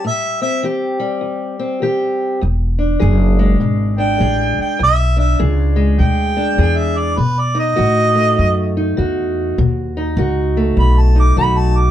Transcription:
Already playing: steel-string acoustic guitar G3
0.05 steel-string acoustic guitar A2, harmonica E5
0.42 steel-string acoustic guitar C4, harmonica E5
0.63 steel-string acoustic guitar E3 G4
1.00 steel-string acoustic guitar G3
1.21 steel-string acoustic guitar E2
1.59 steel-string acoustic guitar C4
1.82 steel-string acoustic guitar E3 G4
2.41 upright bass E1, steel-string acoustic guitar E2
2.79 steel-string acoustic guitar D4
2.99 upright bass F#1, steel-string acoustic guitar E3 G#4
3.39 steel-string acoustic guitar G#3
3.60 upright bass G#1, steel-string acoustic guitar B2
3.98 steel-string acoustic guitar D4, harmonica G5
4.20 upright bass A1, steel-string acoustic guitar E3 G#4
4.58 harmonica G5, muted upright bass stroke
4.79 upright bass B1, steel-string acoustic guitar E2
4.83 harmonica E5
5.17 steel-string acoustic guitar D4, harmonica E5
5.39 upright bass C#2, steel-string acoustic guitar E3 G#4
5.76 steel-string acoustic guitar G#3
5.98 upright bass D2, steel-string acoustic guitar B2, harmonica G5
6.37 steel-string acoustic guitar D4
6.58 upright bass E2, steel-string acoustic guitar E3 G#4
6.77 harmonica E5
6.97 harmonica D5
7.17 steel-string acoustic guitar B2, upright bass B2, harmonica B4
7.40 harmonica D5
7.55 steel-string acoustic guitar D#4
7.59 harmonica D#5
7.76 upright bass A2, steel-string acoustic guitar D#3 F#4
8.15 steel-string acoustic guitar A3
8.36 steel-string acoustic guitar F#2, upright bass F#2
8.77 steel-string acoustic guitar D#4
8.97 upright bass E2, steel-string acoustic guitar D#3 F#4
9.58 upright bass D#2, steel-string acoustic guitar B2
9.97 steel-string acoustic guitar D#4
10.17 upright bass C#2, steel-string acoustic guitar D#3 F#4
10.57 steel-string acoustic guitar A3
10.77 upright bass B1, steel-string acoustic guitar F#2, harmonica B5
10.99 harmonica A5
11.15 steel-string acoustic guitar D#4
11.20 harmonica D6
11.37 upright bass B1, steel-string acoustic guitar D#3 F#4, harmonica B5
11.58 harmonica A5
11.78 harmonica D6

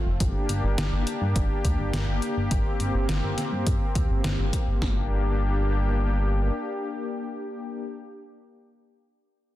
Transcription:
Already playing: analog synth pad A3 C4 F4, downlifter
0.06 analog synth bass F1
0.20 analog synth bass G1, analog synth pad A#3 D4 G4, kick, closed hi-hat
0.49 analog synth bass G1, closed hi-hat
0.64 analog synth bass G1
0.78 analog synth bass G1, snare, closed hi-hat
0.92 analog synth bass G1
1.07 closed hi-hat
1.21 analog synth bass G2
1.36 analog synth bass G1, kick, closed hi-hat
1.65 analog synth bass D2, kick, closed hi-hat
1.79 analog synth bass G1
1.93 analog synth bass G1, snare, closed hi-hat
2.08 analog synth bass G1
2.22 closed hi-hat
2.37 analog synth bass G1
2.51 analog synth bass G1, analog synth pad C4, kick, closed hi-hat
2.80 analog synth bass G1, closed hi-hat
2.94 analog synth bass G1
3.09 analog synth bass G1, snare, closed hi-hat
3.23 analog synth bass G1
3.38 snare, closed hi-hat
3.52 analog synth bass G2
3.67 analog synth bass G1, kick, closed hi-hat
3.95 analog synth bass D2, kick, closed hi-hat
4.10 analog synth bass G1
4.24 analog synth bass G1, snare, closed hi-hat
4.39 analog synth bass G1
4.53 kick, closed hi-hat
4.67 analog synth bass G1
4.82 analog synth bass G1, analog synth pad A#3 D4 G4, kick, snare

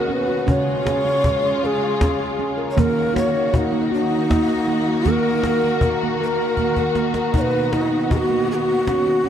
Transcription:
Already playing: handpan B2 F#4, string section D#3 B3 F#4, native american-style wooden flute A#4
0.09 handpan C#4, native american-style wooden flute B4, cajon slap
0.28 handpan F#4
0.47 string section C#3 G#3 F4, handpan C#3 C#4, native american-style wooden flute C#5, cajon bass
0.86 handpan G#4, cajon slap
1.05 handpan C#4
1.24 handpan G#4, cajon bass
1.44 handpan C#4
1.64 handpan G#4, native american-style wooden flute G#4
1.82 cajon slap
2.01 handpan C#4, cajon bass, cajon slap
2.20 handpan G#4
2.39 handpan C#4, cajon slap
2.58 handpan A#4
2.71 native american-style wooden flute C#5
2.77 handpan D#3 A#3, string section D#3 A#3 F#4, native american-style wooden flute A#4, cajon bass
3.14 handpan F#4, native american-style wooden flute C#5, cajon slap
3.34 handpan D#4
3.53 native american-style wooden flute D#4, handpan F#4, cajon bass
3.72 handpan A#3
3.91 native american-style wooden flute D#4, handpan F#4
4.30 handpan A#3, cajon bass, cajon slap
4.48 handpan F#4
4.68 handpan A#3, cajon slap
4.87 handpan F#4
5.06 handpan D#3 A#3, cajon bass, cajon slap
5.10 native american-style wooden flute A#4
5.43 handpan A#4, cajon slap
5.64 handpan A#3
5.81 handpan A#4, cajon bass
6.00 handpan A#3, cajon slap
6.21 handpan A#4, native american-style wooden flute B4
6.28 native american-style wooden flute A#4
6.57 handpan A#3, cajon bass
6.76 handpan A#4, cajon bass
6.95 handpan A#3, cajon slap
7.14 handpan A#4, cajon slap
7.33 handpan B2 D#4, string section B3, cajon bass
7.38 native american-style wooden flute B4 C#5
7.73 native american-style wooden flute D#4, handpan F#4, cajon slap
7.92 handpan D#4
8.11 handpan F#4, native american-style wooden flute G#4, cajon bass
8.17 native american-style wooden flute F#4
8.29 handpan A#3
8.48 handpan F#4, native american-style wooden flute G#4
8.55 native american-style wooden flute F#4
8.69 cajon slap
8.87 handpan C#4, cajon slap
9.06 handpan F#4
9.24 handpan C#4

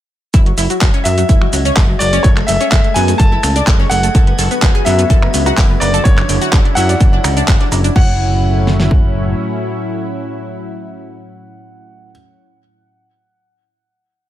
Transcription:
0.34 analog synth bass F#1, synth texture G#3 G#6, synth pluck E4, kick, closed hi-hat, shaker
0.46 synth pluck F#3, closed hi-hat
0.58 analog synth bass F#1, synth pluck E4, closed hi-hat, open hi-hat, shaker
0.70 synth pluck F#3, closed hi-hat, shaker
0.81 analog synth bass F#1, kick, snare, clap, closed hi-hat, shaker
0.94 synth pluck C#4, closed hi-hat
1.04 analog synth bass F#2, synth pluck F#3, grand piano E5, closed hi-hat, open hi-hat, shaker
1.18 synth pluck F#3, closed hi-hat, shaker
1.29 analog synth bass F#1, synth pluck E4, kick, closed hi-hat, shaker
1.42 synth pluck F#3, finger snap
1.53 analog synth bass C#2, synth pluck F#3, closed hi-hat, open hi-hat, shaker
1.65 synth pluck C#4, closed hi-hat, shaker
1.77 analog synth bass F#1, synth pluck F#3, kick, snare, clap, closed hi-hat, open hi-hat, shaker
1.89 synth pluck F#3
1.99 analog synth bass F#1, synth pluck F#3, grand piano D5, closed hi-hat, open hi-hat, shaker
2.13 synth pluck C#4, closed hi-hat, shaker
2.23 analog synth bass F#1, synth pluck A3, grand piano C#5, kick, closed hi-hat, shaker
2.37 synth pluck A3, finger snap, clap, closed hi-hat
2.47 analog synth bass F#1, synth pluck A3, grand piano E5, closed hi-hat, open hi-hat, shaker
2.61 synth pluck C#4, closed hi-hat, shaker
2.70 analog synth bass F#1, synth pluck A3, grand piano E5, kick, snare, clap, closed hi-hat, shaker
2.84 synth pluck A3, closed hi-hat
2.94 analog synth bass F#2, synth pluck B3, grand piano G#5, closed hi-hat, open hi-hat, shaker
3.08 synth pluck A3, snare, closed hi-hat, shaker
3.18 analog synth bass F#1, synth pluck A3, grand piano A5, kick, closed hi-hat, shaker
3.32 synth pluck E4
3.43 analog synth bass C#2, synth pluck A3, finger snap, snare, closed hi-hat, open hi-hat, shaker
3.56 synth pluck D4, closed hi-hat, shaker
3.67 analog synth bass F#1, synth pluck A3, kick, snare, clap, closed hi-hat, shaker
3.80 synth pluck C#4, snare
3.90 analog synth bass F#1, synth pluck A3, grand piano F#5, closed hi-hat, open hi-hat, shaker
4.03 synth pluck A3, closed hi-hat, shaker
4.15 analog synth bass F#1, analog synth pad D3 F#3 B3 F#4, synth pluck A4, kick, closed hi-hat, shaker
4.27 synth pluck B3, closed hi-hat
4.39 analog synth bass F#1, synth pluck A4, closed hi-hat, open hi-hat, shaker
4.51 synth pluck B3, closed hi-hat, shaker
4.62 analog synth bass F#1, synth pluck B3, kick, snare, clap, closed hi-hat, shaker
4.75 synth pluck G#4, closed hi-hat
4.85 analog synth bass F#2, synth pluck B3, grand piano E5, closed hi-hat, open hi-hat, shaker
4.99 synth pluck B3, closed hi-hat, shaker
5.10 analog synth bass F#1, synth pluck A4, kick, closed hi-hat, shaker
5.22 synth pluck B3, finger snap, cowbell
5.34 analog synth bass C#2, synth pluck B3, closed hi-hat, open hi-hat, shaker
5.46 synth pluck F#4, closed hi-hat, cowbell, shaker
5.58 analog synth bass F#1, synth pluck B3, kick, snare, clap, closed hi-hat, open hi-hat, shaker
5.70 synth pluck B3
5.80 analog synth bass F#1, synth pluck B3, grand piano D5, closed hi-hat, open hi-hat, cowbell, shaker
5.94 synth pluck A4, closed hi-hat, shaker
6.04 analog synth bass F#1, analog synth pad F#3 C#4 E4, synth pluck D4, grand piano C#5, kick, closed hi-hat, shaker
6.18 synth pluck D4, finger snap, clap, closed hi-hat
6.29 analog synth bass F#1, synth pluck D4, closed hi-hat, open hi-hat, shaker
6.42 synth pluck F#4, closed hi-hat, shaker
6.53 analog synth bass F#1, synth pluck D4, kick, snare, clap, closed hi-hat, shaker
6.65 synth pluck D4, closed hi-hat
6.75 analog synth bass F#2, synth pluck E4, grand piano F#5, closed hi-hat, open hi-hat, shaker
6.89 synth pluck D4, snare, closed hi-hat, shaker
7.00 analog synth bass F#1, synth pluck D4, kick, closed hi-hat, shaker
7.13 synth pluck D4
7.24 analog synth bass C#2, synth pluck D4, finger snap, snare, closed hi-hat, open hi-hat, cowbell, shaker
7.37 synth pluck D4, closed hi-hat, shaker
7.48 analog synth bass F#1, kick, snare, clap, closed hi-hat, shaker
7.61 synth pluck D4, snare, closed hi-hat
7.72 analog synth bass F#1, synth pluck D4, closed hi-hat, open hi-hat, cowbell, shaker
7.84 synth pluck D4, closed hi-hat, shaker
7.96 analog synth bass F#1, analog synth pad A2 F#3 C#4 E4, synth pluck C#4, grand piano F#5, kick, crash
8.67 snare
8.80 snare
8.91 kick

